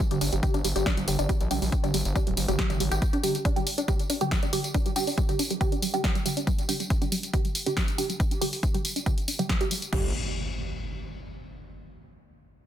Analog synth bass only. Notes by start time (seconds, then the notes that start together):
0.11 G1
0.21 G1
0.33 G1
0.54 G1
0.65 G1
0.76 G1
0.98 G1
1.08 G1
1.19 G1
1.41 A#1
1.51 A#1
1.62 A#1
1.84 G1
1.94 G1
2.05 G1
2.27 D1
2.37 G1
2.49 G1
2.70 G#1
2.80 G#1
2.92 G#1
9.93 G1